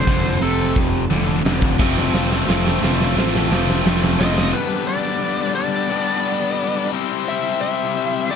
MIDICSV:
0, 0, Header, 1, 9, 480
1, 0, Start_track
1, 0, Tempo, 687285
1, 1252, Time_signature, 4, 2, 24, 8
1, 5837, End_track
2, 0, Start_track
2, 0, Title_t, "Lead electric guitar"
2, 0, Program_c, 0, 29
2, 0, Note_on_c, 0, 72, 94
2, 284, Note_off_c, 0, 72, 0
2, 298, Note_on_c, 0, 69, 106
2, 528, Note_off_c, 0, 69, 0
2, 2929, Note_on_c, 0, 75, 101
2, 3166, Note_on_c, 0, 71, 92
2, 3178, Note_off_c, 0, 75, 0
2, 3401, Note_on_c, 0, 74, 101
2, 3416, Note_off_c, 0, 71, 0
2, 3858, Note_off_c, 0, 74, 0
2, 3877, Note_on_c, 0, 74, 96
2, 4816, Note_off_c, 0, 74, 0
2, 5088, Note_on_c, 0, 76, 106
2, 5310, Note_off_c, 0, 76, 0
2, 5318, Note_on_c, 0, 76, 114
2, 5800, Note_off_c, 0, 76, 0
2, 5803, Note_on_c, 0, 74, 108
2, 5837, Note_off_c, 0, 74, 0
2, 5837, End_track
3, 0, Start_track
3, 0, Title_t, "Reed electric piano"
3, 0, Program_c, 1, 4
3, 1250, Note_on_c, 1, 60, 115
3, 1254, Note_on_c, 1, 65, 98
3, 1261, Note_on_c, 1, 69, 99
3, 1263, Note_on_c, 1, 72, 124
3, 1443, Note_off_c, 1, 60, 0
3, 1445, Note_off_c, 1, 65, 0
3, 1448, Note_off_c, 1, 69, 0
3, 1450, Note_off_c, 1, 72, 0
3, 1487, Note_on_c, 1, 60, 87
3, 1491, Note_on_c, 1, 65, 76
3, 1497, Note_on_c, 1, 69, 78
3, 1499, Note_on_c, 1, 72, 90
3, 1682, Note_off_c, 1, 60, 0
3, 1683, Note_off_c, 1, 65, 0
3, 1686, Note_off_c, 1, 69, 0
3, 1687, Note_off_c, 1, 72, 0
3, 1731, Note_on_c, 1, 65, 82
3, 1732, Note_on_c, 1, 60, 91
3, 1735, Note_on_c, 1, 69, 81
3, 1741, Note_on_c, 1, 72, 98
3, 1924, Note_off_c, 1, 60, 0
3, 1924, Note_off_c, 1, 65, 0
3, 1926, Note_off_c, 1, 69, 0
3, 1929, Note_off_c, 1, 72, 0
3, 1977, Note_on_c, 1, 60, 89
3, 1978, Note_on_c, 1, 65, 85
3, 1981, Note_on_c, 1, 69, 88
3, 1985, Note_on_c, 1, 72, 102
3, 2167, Note_off_c, 1, 60, 0
3, 2167, Note_off_c, 1, 65, 0
3, 2169, Note_off_c, 1, 69, 0
3, 2171, Note_off_c, 1, 72, 0
3, 2213, Note_on_c, 1, 60, 116
3, 2218, Note_on_c, 1, 65, 103
3, 2221, Note_on_c, 1, 69, 101
3, 2222, Note_on_c, 1, 72, 127
3, 2404, Note_off_c, 1, 60, 0
3, 2407, Note_off_c, 1, 65, 0
3, 2409, Note_off_c, 1, 69, 0
3, 2409, Note_off_c, 1, 72, 0
3, 2446, Note_on_c, 1, 60, 92
3, 2451, Note_on_c, 1, 65, 83
3, 2454, Note_on_c, 1, 69, 86
3, 2458, Note_on_c, 1, 72, 104
3, 2641, Note_off_c, 1, 60, 0
3, 2643, Note_off_c, 1, 65, 0
3, 2645, Note_off_c, 1, 69, 0
3, 2647, Note_off_c, 1, 72, 0
3, 2688, Note_on_c, 1, 60, 100
3, 2692, Note_on_c, 1, 65, 83
3, 2694, Note_on_c, 1, 69, 87
3, 2701, Note_on_c, 1, 72, 100
3, 2882, Note_off_c, 1, 60, 0
3, 2884, Note_off_c, 1, 65, 0
3, 2885, Note_off_c, 1, 69, 0
3, 2888, Note_off_c, 1, 72, 0
3, 2927, Note_on_c, 1, 60, 93
3, 2935, Note_on_c, 1, 65, 90
3, 2938, Note_on_c, 1, 69, 87
3, 2939, Note_on_c, 1, 72, 108
3, 3121, Note_off_c, 1, 60, 0
3, 3125, Note_off_c, 1, 65, 0
3, 3127, Note_off_c, 1, 69, 0
3, 3127, Note_off_c, 1, 72, 0
3, 5837, End_track
4, 0, Start_track
4, 0, Title_t, "Overdriven electric guitar"
4, 0, Program_c, 2, 29
4, 1253, Note_on_c, 2, 65, 103
4, 1488, Note_off_c, 2, 65, 0
4, 1497, Note_on_c, 2, 65, 95
4, 1726, Note_off_c, 2, 65, 0
4, 1735, Note_on_c, 2, 65, 113
4, 1968, Note_off_c, 2, 65, 0
4, 1977, Note_on_c, 2, 65, 103
4, 2208, Note_off_c, 2, 65, 0
4, 2216, Note_on_c, 2, 65, 103
4, 2446, Note_off_c, 2, 65, 0
4, 2454, Note_on_c, 2, 65, 109
4, 2688, Note_off_c, 2, 65, 0
4, 2696, Note_on_c, 2, 65, 95
4, 2932, Note_off_c, 2, 65, 0
4, 2941, Note_on_c, 2, 65, 98
4, 3162, Note_off_c, 2, 65, 0
4, 5837, End_track
5, 0, Start_track
5, 0, Title_t, "Steel-string acoustic guitar"
5, 0, Program_c, 3, 25
5, 0, Note_on_c, 3, 53, 69
5, 0, Note_on_c, 3, 60, 64
5, 0, Note_on_c, 3, 65, 71
5, 0, Note_on_c, 3, 69, 73
5, 275, Note_off_c, 3, 53, 0
5, 282, Note_off_c, 3, 60, 0
5, 283, Note_on_c, 3, 53, 85
5, 288, Note_off_c, 3, 65, 0
5, 290, Note_on_c, 3, 60, 81
5, 293, Note_off_c, 3, 69, 0
5, 296, Note_on_c, 3, 65, 90
5, 301, Note_on_c, 3, 69, 92
5, 752, Note_off_c, 3, 53, 0
5, 760, Note_on_c, 3, 53, 70
5, 764, Note_off_c, 3, 60, 0
5, 771, Note_off_c, 3, 65, 0
5, 773, Note_on_c, 3, 60, 73
5, 777, Note_off_c, 3, 69, 0
5, 779, Note_on_c, 3, 65, 75
5, 790, Note_on_c, 3, 69, 80
5, 1240, Note_off_c, 3, 53, 0
5, 1247, Note_off_c, 3, 60, 0
5, 1248, Note_on_c, 3, 53, 85
5, 1252, Note_off_c, 3, 65, 0
5, 1255, Note_on_c, 3, 60, 89
5, 1259, Note_off_c, 3, 69, 0
5, 1260, Note_on_c, 3, 65, 100
5, 1268, Note_on_c, 3, 69, 98
5, 1484, Note_off_c, 3, 69, 0
5, 1490, Note_off_c, 3, 53, 0
5, 1493, Note_on_c, 3, 69, 64
5, 1494, Note_off_c, 3, 60, 0
5, 1496, Note_off_c, 3, 65, 0
5, 1504, Note_on_c, 3, 65, 60
5, 1516, Note_on_c, 3, 60, 56
5, 1732, Note_off_c, 3, 69, 0
5, 1738, Note_off_c, 3, 65, 0
5, 1738, Note_on_c, 3, 53, 92
5, 1739, Note_off_c, 3, 60, 0
5, 1747, Note_on_c, 3, 60, 98
5, 1749, Note_on_c, 3, 65, 101
5, 1754, Note_on_c, 3, 69, 102
5, 1970, Note_off_c, 3, 69, 0
5, 1975, Note_off_c, 3, 53, 0
5, 1979, Note_on_c, 3, 69, 60
5, 1980, Note_off_c, 3, 60, 0
5, 1980, Note_off_c, 3, 65, 0
5, 1992, Note_on_c, 3, 65, 62
5, 1999, Note_on_c, 3, 60, 48
5, 2215, Note_off_c, 3, 69, 0
5, 2218, Note_on_c, 3, 53, 70
5, 2220, Note_off_c, 3, 60, 0
5, 2222, Note_off_c, 3, 65, 0
5, 2229, Note_on_c, 3, 60, 78
5, 2236, Note_on_c, 3, 65, 80
5, 2248, Note_on_c, 3, 69, 75
5, 2447, Note_off_c, 3, 69, 0
5, 2455, Note_off_c, 3, 53, 0
5, 2456, Note_on_c, 3, 69, 70
5, 2458, Note_off_c, 3, 65, 0
5, 2460, Note_off_c, 3, 60, 0
5, 2466, Note_on_c, 3, 65, 63
5, 2478, Note_on_c, 3, 60, 58
5, 2685, Note_off_c, 3, 60, 0
5, 2685, Note_on_c, 3, 53, 94
5, 2693, Note_off_c, 3, 65, 0
5, 2693, Note_on_c, 3, 60, 97
5, 2694, Note_off_c, 3, 69, 0
5, 2701, Note_on_c, 3, 65, 106
5, 2704, Note_on_c, 3, 69, 102
5, 3168, Note_off_c, 3, 53, 0
5, 3172, Note_off_c, 3, 60, 0
5, 3176, Note_off_c, 3, 65, 0
5, 3178, Note_off_c, 3, 69, 0
5, 5837, End_track
6, 0, Start_track
6, 0, Title_t, "Tonewheel organ"
6, 0, Program_c, 4, 16
6, 0, Note_on_c, 4, 57, 75
6, 0, Note_on_c, 4, 60, 74
6, 0, Note_on_c, 4, 65, 81
6, 0, Note_on_c, 4, 72, 81
6, 1225, Note_off_c, 4, 72, 0
6, 1226, Note_off_c, 4, 57, 0
6, 1227, Note_off_c, 4, 60, 0
6, 1227, Note_off_c, 4, 65, 0
6, 1255, Note_on_c, 4, 65, 73
6, 1256, Note_on_c, 4, 60, 73
6, 1257, Note_on_c, 4, 57, 73
6, 1257, Note_on_c, 4, 72, 70
6, 3154, Note_off_c, 4, 60, 0
6, 3154, Note_off_c, 4, 65, 0
6, 3155, Note_off_c, 4, 57, 0
6, 3155, Note_off_c, 4, 72, 0
6, 3173, Note_on_c, 4, 55, 75
6, 3175, Note_on_c, 4, 59, 73
6, 3178, Note_on_c, 4, 71, 77
6, 3179, Note_on_c, 4, 62, 78
6, 4827, Note_off_c, 4, 55, 0
6, 4835, Note_off_c, 4, 59, 0
6, 4836, Note_on_c, 4, 55, 78
6, 4837, Note_off_c, 4, 62, 0
6, 4837, Note_off_c, 4, 71, 0
6, 4838, Note_on_c, 4, 64, 81
6, 4841, Note_on_c, 4, 60, 82
6, 4842, Note_on_c, 4, 76, 77
6, 5837, Note_off_c, 4, 55, 0
6, 5837, Note_off_c, 4, 60, 0
6, 5837, Note_off_c, 4, 64, 0
6, 5837, Note_off_c, 4, 76, 0
6, 5837, End_track
7, 0, Start_track
7, 0, Title_t, "Overdriven electric guitar"
7, 0, Program_c, 5, 29
7, 48, Note_on_c, 5, 41, 74
7, 53, Note_on_c, 5, 50, 88
7, 266, Note_off_c, 5, 41, 0
7, 269, Note_off_c, 5, 50, 0
7, 291, Note_on_c, 5, 41, 89
7, 294, Note_on_c, 5, 48, 101
7, 724, Note_off_c, 5, 41, 0
7, 725, Note_off_c, 5, 48, 0
7, 768, Note_on_c, 5, 41, 85
7, 772, Note_on_c, 5, 50, 96
7, 986, Note_off_c, 5, 41, 0
7, 988, Note_off_c, 5, 50, 0
7, 1016, Note_on_c, 5, 41, 83
7, 1022, Note_on_c, 5, 50, 78
7, 1230, Note_off_c, 5, 41, 0
7, 1233, Note_off_c, 5, 50, 0
7, 1254, Note_on_c, 5, 41, 88
7, 1255, Note_on_c, 5, 48, 92
7, 1256, Note_on_c, 5, 53, 91
7, 1261, Note_on_c, 5, 57, 100
7, 1264, Note_on_c, 5, 60, 96
7, 1484, Note_off_c, 5, 41, 0
7, 1485, Note_off_c, 5, 48, 0
7, 1489, Note_off_c, 5, 53, 0
7, 1491, Note_off_c, 5, 57, 0
7, 1492, Note_on_c, 5, 41, 91
7, 1493, Note_off_c, 5, 60, 0
7, 1494, Note_on_c, 5, 48, 88
7, 1498, Note_on_c, 5, 53, 98
7, 1499, Note_on_c, 5, 57, 90
7, 1501, Note_on_c, 5, 60, 94
7, 1719, Note_off_c, 5, 41, 0
7, 1721, Note_off_c, 5, 48, 0
7, 1726, Note_off_c, 5, 53, 0
7, 1727, Note_on_c, 5, 41, 98
7, 1728, Note_off_c, 5, 60, 0
7, 1729, Note_off_c, 5, 57, 0
7, 1730, Note_on_c, 5, 48, 91
7, 1734, Note_on_c, 5, 53, 104
7, 1737, Note_on_c, 5, 57, 102
7, 1737, Note_on_c, 5, 60, 110
7, 1960, Note_off_c, 5, 41, 0
7, 1963, Note_off_c, 5, 48, 0
7, 1964, Note_off_c, 5, 53, 0
7, 1967, Note_off_c, 5, 60, 0
7, 1968, Note_off_c, 5, 57, 0
7, 1968, Note_on_c, 5, 41, 84
7, 1972, Note_on_c, 5, 48, 87
7, 1972, Note_on_c, 5, 53, 93
7, 1975, Note_on_c, 5, 60, 90
7, 1976, Note_on_c, 5, 57, 92
7, 2200, Note_off_c, 5, 41, 0
7, 2205, Note_off_c, 5, 48, 0
7, 2206, Note_off_c, 5, 53, 0
7, 2209, Note_on_c, 5, 41, 87
7, 2210, Note_off_c, 5, 57, 0
7, 2211, Note_off_c, 5, 60, 0
7, 2213, Note_on_c, 5, 48, 88
7, 2215, Note_on_c, 5, 53, 87
7, 2218, Note_on_c, 5, 57, 99
7, 2220, Note_on_c, 5, 60, 104
7, 2443, Note_off_c, 5, 41, 0
7, 2450, Note_off_c, 5, 48, 0
7, 2451, Note_on_c, 5, 41, 97
7, 2452, Note_off_c, 5, 57, 0
7, 2453, Note_off_c, 5, 53, 0
7, 2456, Note_off_c, 5, 60, 0
7, 2458, Note_on_c, 5, 48, 114
7, 2460, Note_on_c, 5, 57, 110
7, 2461, Note_on_c, 5, 53, 109
7, 2464, Note_on_c, 5, 60, 113
7, 2685, Note_off_c, 5, 41, 0
7, 2686, Note_off_c, 5, 48, 0
7, 2691, Note_off_c, 5, 53, 0
7, 2692, Note_off_c, 5, 57, 0
7, 2693, Note_on_c, 5, 41, 83
7, 2695, Note_off_c, 5, 60, 0
7, 2695, Note_on_c, 5, 48, 93
7, 2700, Note_on_c, 5, 53, 84
7, 2700, Note_on_c, 5, 57, 93
7, 2703, Note_on_c, 5, 60, 103
7, 2929, Note_off_c, 5, 41, 0
7, 2932, Note_off_c, 5, 48, 0
7, 2936, Note_off_c, 5, 53, 0
7, 2936, Note_off_c, 5, 57, 0
7, 2938, Note_on_c, 5, 41, 85
7, 2940, Note_off_c, 5, 60, 0
7, 2941, Note_on_c, 5, 48, 83
7, 2944, Note_on_c, 5, 53, 90
7, 2945, Note_on_c, 5, 57, 91
7, 2949, Note_on_c, 5, 60, 94
7, 3160, Note_off_c, 5, 41, 0
7, 3162, Note_off_c, 5, 48, 0
7, 3163, Note_off_c, 5, 53, 0
7, 3164, Note_off_c, 5, 57, 0
7, 3166, Note_off_c, 5, 60, 0
7, 3171, Note_on_c, 5, 43, 88
7, 3174, Note_on_c, 5, 50, 85
7, 3178, Note_on_c, 5, 55, 91
7, 3184, Note_on_c, 5, 59, 99
7, 3188, Note_on_c, 5, 62, 93
7, 4110, Note_off_c, 5, 43, 0
7, 4118, Note_off_c, 5, 50, 0
7, 4118, Note_on_c, 5, 43, 79
7, 4123, Note_off_c, 5, 59, 0
7, 4125, Note_off_c, 5, 62, 0
7, 4127, Note_off_c, 5, 55, 0
7, 4128, Note_on_c, 5, 50, 84
7, 4130, Note_on_c, 5, 55, 92
7, 4133, Note_on_c, 5, 59, 93
7, 4136, Note_on_c, 5, 62, 100
7, 4830, Note_off_c, 5, 43, 0
7, 4834, Note_off_c, 5, 50, 0
7, 4835, Note_off_c, 5, 55, 0
7, 4837, Note_off_c, 5, 59, 0
7, 4837, Note_on_c, 5, 48, 96
7, 4838, Note_off_c, 5, 62, 0
7, 4844, Note_on_c, 5, 55, 92
7, 4851, Note_on_c, 5, 60, 102
7, 4857, Note_on_c, 5, 64, 108
7, 5788, Note_off_c, 5, 48, 0
7, 5792, Note_off_c, 5, 55, 0
7, 5792, Note_off_c, 5, 64, 0
7, 5800, Note_on_c, 5, 64, 88
7, 5804, Note_off_c, 5, 60, 0
7, 5806, Note_on_c, 5, 60, 92
7, 5812, Note_on_c, 5, 55, 79
7, 5837, Note_off_c, 5, 55, 0
7, 5837, Note_off_c, 5, 60, 0
7, 5837, Note_off_c, 5, 64, 0
7, 5837, End_track
8, 0, Start_track
8, 0, Title_t, "Fingered electric bass"
8, 0, Program_c, 6, 33
8, 54, Note_on_c, 6, 29, 92
8, 274, Note_off_c, 6, 29, 0
8, 292, Note_on_c, 6, 29, 88
8, 513, Note_off_c, 6, 29, 0
8, 533, Note_on_c, 6, 29, 99
8, 754, Note_off_c, 6, 29, 0
8, 773, Note_on_c, 6, 29, 88
8, 994, Note_off_c, 6, 29, 0
8, 1015, Note_on_c, 6, 29, 93
8, 1234, Note_off_c, 6, 29, 0
8, 1253, Note_on_c, 6, 29, 98
8, 1480, Note_off_c, 6, 29, 0
8, 1496, Note_on_c, 6, 29, 92
8, 1721, Note_off_c, 6, 29, 0
8, 1737, Note_on_c, 6, 29, 86
8, 1962, Note_off_c, 6, 29, 0
8, 1971, Note_on_c, 6, 29, 79
8, 2198, Note_off_c, 6, 29, 0
8, 2212, Note_on_c, 6, 33, 94
8, 2439, Note_off_c, 6, 33, 0
8, 2454, Note_on_c, 6, 29, 93
8, 2680, Note_off_c, 6, 29, 0
8, 2695, Note_on_c, 6, 29, 85
8, 2921, Note_off_c, 6, 29, 0
8, 2936, Note_on_c, 6, 29, 91
8, 3161, Note_off_c, 6, 29, 0
8, 5837, End_track
9, 0, Start_track
9, 0, Title_t, "Drums"
9, 50, Note_on_c, 9, 46, 60
9, 51, Note_on_c, 9, 36, 94
9, 119, Note_off_c, 9, 46, 0
9, 121, Note_off_c, 9, 36, 0
9, 292, Note_on_c, 9, 46, 81
9, 362, Note_off_c, 9, 46, 0
9, 531, Note_on_c, 9, 46, 56
9, 532, Note_on_c, 9, 36, 89
9, 601, Note_off_c, 9, 46, 0
9, 602, Note_off_c, 9, 36, 0
9, 773, Note_on_c, 9, 48, 63
9, 843, Note_off_c, 9, 48, 0
9, 1022, Note_on_c, 9, 38, 99
9, 1092, Note_off_c, 9, 38, 0
9, 1133, Note_on_c, 9, 36, 90
9, 1203, Note_off_c, 9, 36, 0
9, 1249, Note_on_c, 9, 49, 121
9, 1253, Note_on_c, 9, 36, 111
9, 1258, Note_on_c, 9, 38, 63
9, 1319, Note_off_c, 9, 49, 0
9, 1323, Note_off_c, 9, 36, 0
9, 1328, Note_off_c, 9, 38, 0
9, 1381, Note_on_c, 9, 38, 63
9, 1451, Note_off_c, 9, 38, 0
9, 1498, Note_on_c, 9, 38, 74
9, 1567, Note_off_c, 9, 38, 0
9, 1621, Note_on_c, 9, 38, 61
9, 1691, Note_off_c, 9, 38, 0
9, 1746, Note_on_c, 9, 38, 82
9, 1815, Note_off_c, 9, 38, 0
9, 1866, Note_on_c, 9, 38, 73
9, 1936, Note_off_c, 9, 38, 0
9, 1986, Note_on_c, 9, 38, 90
9, 2056, Note_off_c, 9, 38, 0
9, 2107, Note_on_c, 9, 38, 73
9, 2176, Note_off_c, 9, 38, 0
9, 2224, Note_on_c, 9, 38, 92
9, 2294, Note_off_c, 9, 38, 0
9, 2343, Note_on_c, 9, 38, 77
9, 2413, Note_off_c, 9, 38, 0
9, 2460, Note_on_c, 9, 38, 88
9, 2530, Note_off_c, 9, 38, 0
9, 2583, Note_on_c, 9, 38, 88
9, 2653, Note_off_c, 9, 38, 0
9, 2700, Note_on_c, 9, 38, 107
9, 2770, Note_off_c, 9, 38, 0
9, 2820, Note_on_c, 9, 38, 92
9, 2890, Note_off_c, 9, 38, 0
9, 2938, Note_on_c, 9, 38, 107
9, 3008, Note_off_c, 9, 38, 0
9, 3059, Note_on_c, 9, 38, 97
9, 3129, Note_off_c, 9, 38, 0
9, 5837, End_track
0, 0, End_of_file